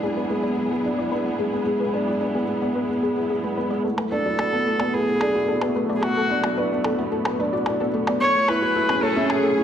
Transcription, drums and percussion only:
3.98 percussion blips
4.39 percussion blips
4.80 percussion blips
5.21 percussion blips
5.62 percussion blips
6.03 percussion blips
6.44 percussion blips
6.84 percussion blips
7.25 percussion blips
7.66 percussion blips
8.07 percussion blips
8.48 percussion blips
8.89 percussion blips
9.30 percussion blips

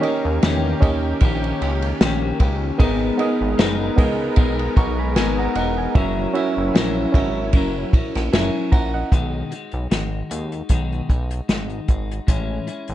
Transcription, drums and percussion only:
0.03 ride
0.43 snare, ride
0.82 kick, ride
1.21 kick, ride
1.44 ride
1.62 ride
1.82 ride
2.01 snare, ride
2.40 kick, ride
2.80 kick, ride
3.19 ride
3.59 snare, ride
3.98 kick, ride
4.36 kick, ride
4.59 ride
4.77 kick, ride
5.16 snare, ride
5.55 ride
5.95 kick, ride
6.35 ride
6.75 snare, ride
7.14 kick, ride
7.53 kick, ride
7.93 kick, ride
8.15 snare, ride
8.33 snare, ride
8.72 kick, ride
9.12 kick, closed hi-hat
9.52 closed hi-hat
9.72 closed hi-hat
9.91 snare, closed hi-hat
10.31 closed hi-hat
10.52 closed hi-hat
10.69 kick, closed hi-hat
10.92 closed hi-hat
11.10 kick, closed hi-hat
11.31 closed hi-hat
11.49 snare, closed hi-hat
11.70 closed hi-hat
11.88 kick, closed hi-hat
12.11 closed hi-hat
12.28 kick, closed hi-hat
12.67 closed hi-hat
12.88 closed hi-hat

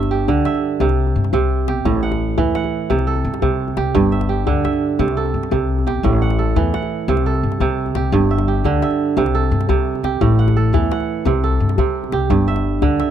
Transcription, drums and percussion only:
0.03 djembe slap, djembe tone
0.12 djembe slap
0.28 djembe slap, djembe tone, djembe bass
0.45 djembe slap
0.54 djembe tone
0.80 djembe tone, djembe bass
0.89 djembe slap
1.07 djembe tone
1.24 djembe slap
1.33 djembe slap, djembe tone, djembe bass
1.51 djembe slap
1.68 djembe slap
1.77 djembe slap
1.85 djembe tone, djembe bass
2.03 djembe slap
2.12 djembe slap, djembe tone
2.20 djembe slap
2.38 djembe slap, djembe tone, djembe bass
2.55 djembe slap
2.64 djembe tone
2.90 djembe tone, djembe bass
2.99 djembe slap
3.16 djembe slap, djembe tone
3.34 djembe slap
3.42 djembe slap, djembe tone, djembe bass
3.51 djembe slap
3.59 djembe slap
3.68 djembe tone
3.77 djembe slap
3.86 djembe slap
3.95 djembe tone, djembe bass
4.12 djembe slap
4.21 djembe slap, djembe tone
4.29 djembe slap
4.47 djembe slap, djembe tone, djembe bass
4.65 djembe slap
4.73 djembe tone
4.99 djembe tone, djembe bass
5.08 djembe slap
5.26 djembe tone
5.43 djembe slap
5.52 djembe slap, djembe tone, djembe bass
5.79 djembe tone
5.88 djembe slap
6.04 djembe tone, djembe bass
6.30 djembe slap, djembe tone
6.56 djembe slap, djembe tone, djembe bass
6.74 djembe slap
6.82 djembe tone
7.08 djembe tone, djembe bass
7.17 djembe slap
7.34 djembe tone
7.52 djembe slap
7.60 djembe slap, djembe tone, djembe bass
7.69 djembe slap
7.78 djembe slap
7.86 djembe tone
7.95 djembe slap
8.03 djembe slap
8.13 djembe tone, djembe bass
8.30 djembe slap
8.38 djembe slap, djembe tone
8.65 djembe slap, djembe tone, djembe bass
8.82 djembe slap
8.91 djembe tone
9.17 djembe tone, djembe bass
9.26 djembe slap
9.43 djembe slap, djembe tone
9.61 djembe slap
9.69 djembe slap, djembe tone, djembe bass
9.87 djembe slap
9.95 djembe tone
10.04 djembe slap
10.21 djembe tone, djembe bass
10.39 djembe slap
10.48 djembe slap, djembe tone
10.57 djembe slap
10.74 djembe slap, djembe tone, djembe bass
10.91 djembe slap
11.00 djembe tone
11.26 djembe tone, djembe bass
11.52 djembe slap, djembe tone
11.69 djembe slap
11.78 djembe slap, djembe tone, djembe bass
11.87 djembe slap
11.95 djembe slap
12.04 djembe tone
12.12 djembe slap
12.21 djembe slap
12.30 djembe tone, djembe bass
12.48 djembe slap
12.56 djembe slap, djembe tone
12.65 djembe slap
12.82 djembe slap, djembe tone, djembe bass
13.00 djembe slap

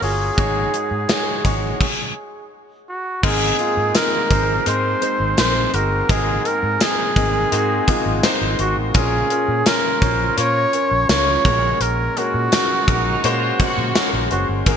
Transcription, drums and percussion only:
0.02 open hi-hat
0.38 kick, closed hi-hat
0.74 closed hi-hat
1.09 snare, closed hi-hat
1.45 kick, closed hi-hat
1.81 kick, crash
3.23 kick, crash
3.59 closed hi-hat
3.95 snare, closed hi-hat, tambourine
4.31 kick, closed hi-hat
4.66 closed hi-hat
5.02 closed hi-hat
5.37 snare, closed hi-hat, tambourine
5.74 closed hi-hat
6.09 kick, closed hi-hat
6.45 closed hi-hat
6.80 snare, closed hi-hat, tambourine
7.16 kick, closed hi-hat
7.52 closed hi-hat
7.88 kick, closed hi-hat
8.23 snare, closed hi-hat, tambourine
8.59 closed hi-hat
8.94 kick, closed hi-hat
9.30 closed hi-hat
9.66 snare, closed hi-hat, tambourine
10.02 kick, closed hi-hat
10.38 closed hi-hat
10.73 closed hi-hat
11.09 snare, closed hi-hat, tambourine
11.45 kick, closed hi-hat
11.81 closed hi-hat
12.17 closed hi-hat
12.52 snare, closed hi-hat, tambourine
12.88 kick, closed hi-hat
13.24 closed hi-hat
13.60 kick, closed hi-hat
13.95 snare, closed hi-hat, tambourine
14.31 closed hi-hat
14.66 kick, closed hi-hat

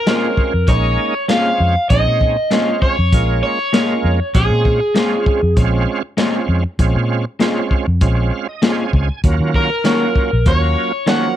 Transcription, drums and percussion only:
0.07 snare, closed hi-hat
0.37 kick
0.68 kick, closed hi-hat
1.29 snare, closed hi-hat
1.90 kick, closed hi-hat
2.21 kick
2.51 snare, closed hi-hat
2.82 kick
3.13 kick, closed hi-hat
3.74 snare, closed hi-hat
4.35 kick, closed hi-hat
4.65 kick
4.95 snare, closed hi-hat
5.26 kick
5.57 kick, closed hi-hat
6.18 snare, closed hi-hat
6.79 kick, closed hi-hat
7.40 snare, closed hi-hat
7.71 kick
8.01 kick, closed hi-hat
8.62 snare, closed hi-hat
8.93 kick
9.24 kick, closed hi-hat
9.54 kick
9.85 snare, closed hi-hat
10.16 kick
10.46 kick, closed hi-hat
11.07 snare, closed hi-hat

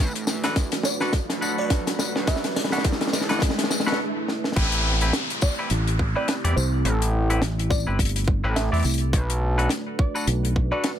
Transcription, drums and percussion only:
0.03 tambourine
0.07 tambourine
0.11 tambourine
0.15 closed hi-hat, tambourine
0.18 tambourine
0.21 tambourine
0.24 tambourine
0.27 snare, tambourine
0.44 snare, closed hi-hat, tambourine
0.56 kick, snare, closed hi-hat, tambourine
0.72 snare, closed hi-hat, tambourine
0.83 snare, tambourine
1.00 snare, tambourine
1.13 kick, snare, closed hi-hat, tambourine
1.30 snare, closed hi-hat
1.42 tambourine
1.58 tambourine
1.70 kick, snare, closed hi-hat, tambourine
1.87 snare, closed hi-hat, tambourine
1.99 snare, tambourine
2.16 snare
2.27 kick, snare, closed hi-hat, tambourine
2.36 snare
2.44 snare, closed hi-hat
2.50 snare
2.56 snare, tambourine
2.59 snare
2.64 snare
2.70 snare
2.72 snare, closed hi-hat, tambourine
2.78 snare
2.84 kick, snare, closed hi-hat, tambourine
2.92 snare
3.01 snare, closed hi-hat, tambourine
3.07 snare
3.13 snare, tambourine
3.21 snare
3.29 snare, closed hi-hat, tambourine
3.39 snare
3.42 kick, snare, closed hi-hat, tambourine
3.49 snare
3.58 snare, closed hi-hat, tambourine
3.64 snare
3.70 snare, tambourine
3.80 snare
3.87 snare, tambourine
3.92 snare
4.28 snare
4.44 snare
4.52 snare
4.56 kick, closed hi-hat, crash
4.62 snare
4.72 closed hi-hat
5.01 closed hi-hat
5.13 snare, closed hi-hat
5.30 closed hi-hat
5.41 kick, tambourine
5.70 closed hi-hat
5.88 closed hi-hat
5.99 kick
6.28 snare, closed hi-hat
6.45 snare, closed hi-hat
6.57 tambourine
6.85 closed hi-hat
7.02 closed hi-hat
7.30 closed hi-hat
7.42 snare, closed hi-hat
7.59 closed hi-hat
7.71 kick, snare, tambourine
7.99 kick, closed hi-hat
8.05 closed hi-hat
8.09 closed hi-hat
8.16 closed hi-hat
8.19 closed hi-hat
8.24 kick, closed hi-hat
8.56 snare, closed hi-hat
8.74 closed hi-hat
8.77 closed hi-hat
8.80 closed hi-hat
8.83 closed hi-hat, tambourine
8.85 closed hi-hat
8.89 closed hi-hat
8.94 closed hi-hat
8.98 closed hi-hat
9.13 kick, closed hi-hat
9.30 closed hi-hat
9.59 closed hi-hat
9.69 snare, closed hi-hat
9.99 kick
10.15 tambourine
10.27 closed hi-hat
10.45 closed hi-hat
10.56 kick
10.84 snare, closed hi-hat

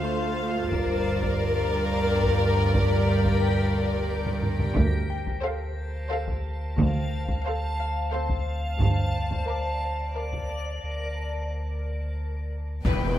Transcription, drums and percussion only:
0.72 taiko
1.22 taiko
2.23 taiko
2.74 taiko
3.25 taiko
4.26 taiko low-mid
4.43 taiko low-mid
4.59 taiko low
4.76 taiko
5.27 taiko
6.27 taiko
6.78 taiko
7.28 taiko
8.29 taiko
8.80 taiko
9.31 taiko
10.33 taiko
12.85 taiko

